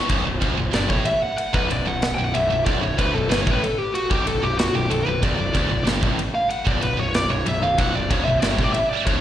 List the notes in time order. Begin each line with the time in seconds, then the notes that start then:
0.09 B0 B1, kick, ride
0.26 B0 B1
0.42 D1 D2, kick, ride
0.58 B0 B1
0.73 G1 G2 D5, snare, ride
0.89 A1 A2 C#5, kick
1.05 E5, ride
1.22 F#5
1.38 F#5, ride
1.53 B0 B1 B4, kick
1.70 B0 B1 D5, ride
1.85 B0 B1 F#5
2.02 F#5, snare, ride
2.15 B1 G5
2.20 B0
2.25 F#5
2.34 B0 B1 E5, ride
2.48 B0 B1 E5
2.65 B0 B1 D5, kick, ride
2.82 B0 B1 C#5
2.98 D1 D2 B4, kick, ride
3.15 B0 B1 A4
3.29 G1 G2 B4, snare, ride
3.41 C#5
3.46 A1 A2, kick
3.51 B4
3.63 A4, ride
3.78 G4
3.94 F#4, ride
4.10 B0 B1 G4, kick
4.25 B0 B1 A4, ride
4.42 B0 B1 G4
4.59 F#4, snare, ride
4.74 B0 B1 G4
4.90 B0 B1 A4, ride
5.06 B0 B1 B4
5.23 B0 B1 D5, kick, ride
5.38 B0 B1
5.55 D1 D2, kick, ride
5.69 B0 B1
5.84 G1 G2, snare, ride
6.03 A1 A2, kick
6.19 ride
6.35 F5
6.50 F#5, ride
6.67 B0 B1 D5, kick
6.82 B0 B1 B4, ride
6.97 B0 B1 C#5
7.14 D5, snare, ride
7.30 B0 B1 C#5
7.45 B0 B1 E5, ride
7.62 B0 B1 F5
7.78 B0 B1 F#5, kick, ride
7.94 B0 B1 D5
8.10 D1 D2 C#5, kick, ride
8.25 B0 B1 E5
8.41 G1 G2 D5, snare, ride
8.52 C#5
8.59 A1 A2, kick
8.63 D5
8.73 E5, ride
8.90 D5
9.06 D1 D2 C#5, kick, ride